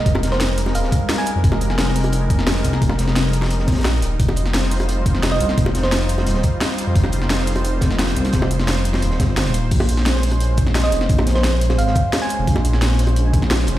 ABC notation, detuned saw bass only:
X:1
M:4/4
L:1/16
Q:1/4=174
K:Ebmix
V:1 name="Detuned saw bass" clef=bass
F,,,8 E,,,2 z4 z F,, | F,,,12- F,,,2 C,,2 | F,,,8- F,,,2 B,,,4 E,,,2 | F,,,12- F,,,2 C,,2 |
F,,,8 E,,,2 z4 z F,, | F,,,12- F,,,2 C,,2 | F,,,8 E,,,2 G,,,3 E,,,3 | B,,,12- B,,,2 F,,,2 |
B,,,8 A,,,2 z4 z F,,, | B,,,12- B,,,2 F,,,2 |]